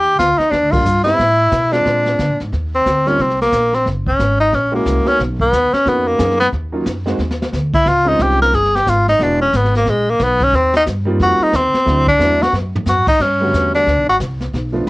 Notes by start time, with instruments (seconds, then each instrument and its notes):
Already playing: upright bass D#2, tenor saxophone G4
0.19 upright bass D2, tenor saxophone F4, kick, snare, hi-hat pedal
0.38 tenor saxophone D#4, muted upright bass stroke, snare
0.51 upright bass D#2, tenor saxophone D4, brush sweep, kick, snare
0.62 upright bass D2
0.71 upright bass A#1, grand piano G3 A#3 D4 F4, tenor saxophone F4, kick, ride
0.84 upright bass G2, hi-hat pedal
1.04 grand piano G3 B3 C4 E4, tenor saxophone E4, snare
1.19 upright bass A2, brush sweep, kick, snare
1.52 upright bass B2, kick, snare, hi-hat pedal
1.72 grand piano G#3 C4 D4 F4, tenor saxophone D4, snare
1.85 upright bass A#2, brush sweep, kick, snare
2.06 snare
2.19 upright bass D3, kick, snare, hi-hat pedal
2.29 upright bass A#2
2.40 upright bass G#2, snare
2.52 upright bass D#2, brush sweep, kick, snare
2.75 tenor saxophone C4
2.85 upright bass D2, kick, snare, hi-hat pedal
3.05 grand piano G3 A#3 C4 D#4 F4, tenor saxophone C#4, snare
3.19 upright bass C2, tenor saxophone C4, brush sweep, kick, snare
3.30 snare
3.41 tenor saxophone A#3, snare
3.52 upright bass A#1, kick, snare, hi-hat pedal
3.73 tenor saxophone C4, snare
3.85 upright bass F#1, brush sweep, kick, snare
4.06 tenor saxophone C#4, kick
4.19 upright bass G#1, kick, snare, hi-hat pedal
4.40 tenor saxophone D#4
4.52 upright bass A#1, tenor saxophone C#4, brush sweep, kick, snare
4.72 grand piano G#3 A#3 C#4 E4 F#4, tenor saxophone A#3
4.86 upright bass C2, kick, snare, hi-hat pedal
5.05 grand piano A#3 B3 C#4 D#4 F#4, tenor saxophone C#4, muted upright bass stroke, snare
5.19 upright bass B1, brush sweep, kick, snare
5.40 tenor saxophone B3, kick
5.52 upright bass D#2, kick, snare, hi-hat pedal
5.73 tenor saxophone C#4, muted upright bass stroke, snare
5.85 upright bass F2, grand piano A#3 B3 C#4 D#4 F#4, tenor saxophone B3, brush sweep, kick, snare
6.07 tenor saxophone A#3
6.18 upright bass F#2, grand piano A#3 B3 C#4 D#4 G#4, kick, snare, hi-hat pedal
6.30 snare
6.40 tenor saxophone B3, snare
6.52 upright bass D#2, brush sweep, kick, snare
6.72 grand piano F#3 A#3 C#4 D#4 F4
6.86 upright bass F#2, kick, snare, hi-hat pedal
7.06 grand piano G#3 A#3 C4 D#4 F#4, snare
7.18 upright bass D#2, snare
7.31 snare
7.42 snare
7.52 upright bass D2, snare, hi-hat pedal
7.74 tenor saxophone E4, kick, crash
7.86 upright bass C#2, tenor saxophone F4, brush sweep, kick, snare
8.05 grand piano G#3 C4 C#4 D#4 F4, tenor saxophone D#4
8.19 upright bass C2, tenor saxophone G4, kick, snare, hi-hat pedal
8.31 snare
8.42 tenor saxophone A#4, snare
8.52 upright bass G1, tenor saxophone G#4, brush sweep, kick, snare
8.65 snare
8.76 tenor saxophone G4, snare
8.86 upright bass G#1, tenor saxophone F4, kick, snare, hi-hat pedal
9.08 tenor saxophone D#4, snare
9.19 upright bass E1, grand piano G#3 B3 D4 E4 F#4, brush sweep, kick, snare
9.23 tenor saxophone D4
9.41 tenor saxophone C#4
9.53 upright bass G#1, tenor saxophone B3, kick, snare, hi-hat pedal
9.64 snare
9.75 tenor saxophone A#3, snare
9.86 upright bass A#1, brush sweep, kick, snare
9.90 tenor saxophone G#3
10.10 tenor saxophone A#3
10.20 upright bass B1, kick, snare, hi-hat pedal
10.24 tenor saxophone B3
10.40 tenor saxophone C#4, kick, snare
10.53 upright bass D#2, tenor saxophone C4, brush sweep, kick, snare
10.74 tenor saxophone D#4, snare
10.86 upright bass G2, kick, snare, hi-hat pedal
11.05 grand piano G3 A#3 C4 D#4 F4
11.19 upright bass F2, tenor saxophone F#4, brush sweep, kick, snare
11.39 tenor saxophone D#4, muted upright bass stroke
11.53 upright bass D#2, tenor saxophone C4, kick, snare, hi-hat pedal
11.74 muted upright bass stroke, snare
11.85 upright bass D2, grand piano F#3 A3 C4 D4 E4, brush sweep, kick, snare
12.07 tenor saxophone D4, kick
12.19 upright bass E2, grand piano F#3 A3 C4 D4 E4, snare, hi-hat pedal
12.42 tenor saxophone F#4, snare
12.52 upright bass F#2, snare
12.75 floor tom
12.86 upright bass F#2, tenor saxophone F#4, snare, hi-hat pedal
13.07 tenor saxophone D#4, muted upright bass stroke, kick, crash
13.19 upright bass G2, tenor saxophone C#4, brush sweep, kick, snare
13.40 grand piano D3 G3 A3 B3 F#4
13.53 upright bass E2, kick, snare, hi-hat pedal
13.74 tenor saxophone D4, snare
13.86 upright bass D2, brush sweep, kick, snare
13.97 upright bass B1
14.08 upright bass G1, tenor saxophone F#4
14.20 upright bass C2, kick, snare, hi-hat pedal
14.40 snare
14.53 upright bass B1, brush sweep, kick, snare
14.72 grand piano F3 A3 B3 D4 F4